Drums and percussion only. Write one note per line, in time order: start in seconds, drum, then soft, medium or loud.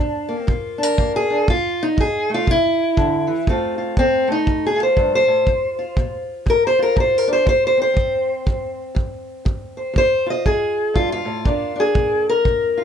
0.48 kick medium
0.98 kick medium
1.48 kick medium
1.98 kick medium
2.47 kick medium
2.97 kick medium
3.47 kick medium
3.97 kick medium
4.47 kick medium
4.97 kick medium
5.47 kick medium
5.97 kick medium
6.47 kick medium
6.97 kick medium
7.47 kick medium
7.97 kick medium
8.47 kick medium
8.96 kick medium
9.46 kick medium
9.96 kick medium
10.46 kick medium
10.96 kick medium
11.46 kick medium
11.95 kick medium
12.45 kick medium